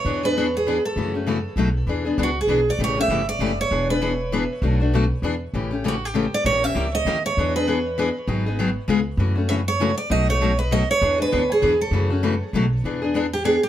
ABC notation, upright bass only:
X:1
M:3/4
L:1/8
Q:"Swing" 1/4=197
K:Emix
V:1 name="Upright bass" clef=bass
E,,6 | F,,4 B,,,2 | E,,2 C,,2 B,,,2 | A,,,2 =G,,,2 F,,,2 |
E,,,6 | B,,,4 E,,2 | A,,,6 | ^A,,,2 C,,2 ^D,,2 |
E,,6 | G,,,4 C,,2 | F,,6 | B,,,6 |
E,,2 D,,2 E,,2 | F,,4 B,,,2 | E,,6 |]